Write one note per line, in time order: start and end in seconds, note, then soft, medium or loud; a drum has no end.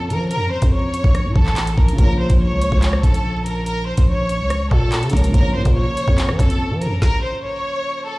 0.00 0.11 F2 loud
0.00 1.91 C#3 medium
0.00 1.93 F3 medium
0.00 1.95 A#3 medium
0.00 1.96 F4 medium
0.00 1.97 C#5 medium
0.10 0.37 F3 medium
0.10 0.28 A#4 medium
0.10 closed hi-hat medium
0.31 0.49 A#4 loud
0.31 closed hi-hat medium
0.36 0.61 F2 loud
0.52 0.70 C5 medium
0.62 1.02 F2 loud
0.62 kick loud
0.62 closed hi-hat medium
0.73 1.32 C#5 medium
0.94 closed hi-hat medium
1.04 1.27 A#1 loud
1.04 kick medium
1.15 cross-stick medium
1.15 closed hi-hat medium
1.25 1.35 A#2 loud
1.36 1.76 A1 loud
1.36 1.75 A4 medium
1.36 kick loud
1.46 clap medium
1.56 clap loud
1.56 closed hi-hat medium
1.67 closed hi-hat medium
1.78 1.98 A#1 loud
1.78 1.96 A#4 medium
1.78 kick medium
1.89 closed hi-hat medium
1.93 5.06 C#3 medium
1.93 5.08 F3 medium
1.98 2.29 A#1 loud
1.98 5.09 A#3 medium
1.98 5.10 F4 medium
1.98 2.17 A#4 loud
1.98 kick loud
1.98 closed hi-hat medium
2.03 5.12 C#5 medium
2.20 2.38 C5 medium
2.30 2.52 A#1 loud
2.30 kick loud
2.30 closed hi-hat medium
2.41 3.00 C#5 loud
2.51 2.71 C#2 loud
2.61 closed hi-hat medium
2.72 3.02 C#2 loud
2.72 kick medium
2.82 clap loud
2.82 closed hi-hat medium
2.93 cross-stick loud
3.03 3.94 A#1 loud
3.03 3.43 A4 medium
3.03 kick loud
3.03 closed hi-hat medium
3.14 closed hi-hat medium
3.46 3.64 A#4 medium
3.46 closed hi-hat medium
3.66 3.85 A#4 loud
3.66 closed hi-hat medium
3.87 4.06 C5 medium
3.97 4.41 A#1 loud
3.97 kick loud
3.97 closed hi-hat medium
4.08 4.68 C#5 medium
4.29 closed hi-hat medium
4.40 4.70 C#2 loud
4.50 cross-stick medium
4.50 closed hi-hat medium
4.71 5.04 A#2 loud
4.71 5.11 A4 loud
4.71 kick loud
4.92 clap loud
4.92 closed hi-hat medium
5.03 5.13 C#3 loud
5.03 closed hi-hat medium
5.10 5.33 C#2 loud
5.10 5.28 C#3 medium
5.10 5.30 F3 soft
5.10 5.33 A#3 soft
5.10 5.31 A#4 medium
5.10 kick medium
5.10 closed hi-hat medium
5.15 5.35 F4 medium
5.15 5.36 C#5 medium
5.15 closed hi-hat medium
5.24 closed hi-hat medium
5.29 8.19 C#3 medium
5.29 8.19 F3 medium
5.34 5.57 A#1 loud
5.34 8.19 A#3 medium
5.34 8.19 F4 medium
5.34 5.52 A#4 loud
5.34 kick loud
5.34 closed hi-hat medium
5.40 8.19 C#5 medium
5.55 5.65 A#2 loud
5.55 5.73 C5 medium
5.65 5.86 A#2 loud
5.65 kick loud
5.65 closed hi-hat medium
5.76 6.35 C#5 loud
5.97 closed hi-hat medium
6.08 6.30 F2 loud
6.08 kick medium
6.18 clap loud
6.18 closed hi-hat medium
6.29 6.39 F3 loud
6.29 cross-stick loud
6.39 6.72 F2 loud
6.39 6.78 A4 medium
6.39 kick loud
6.39 closed hi-hat medium
6.50 closed hi-hat medium
6.70 6.88 F3 loud
6.81 6.99 A#4 medium
6.81 closed hi-hat medium
6.86 7.01 F2 medium
7.02 7.20 A#4 loud
7.02 kick loud
7.02 snare medium
7.23 7.41 C5 medium
7.44 8.03 C#5 loud
8.07 8.19 A4 medium